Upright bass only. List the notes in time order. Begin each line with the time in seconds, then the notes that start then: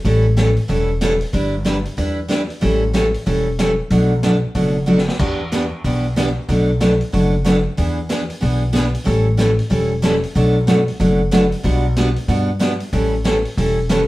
0.05 A1
0.69 E1
1.33 G1
1.98 E2
2.63 A1
3.27 E1
3.90 B1
4.55 F#1
5.20 E2
5.84 B1
6.49 B1
7.13 F#1
7.78 E2
8.43 B1
9.07 A1
9.71 E1
10.36 B1
11.00 F#1
11.64 B1
12.28 G2
12.93 A1
13.57 E1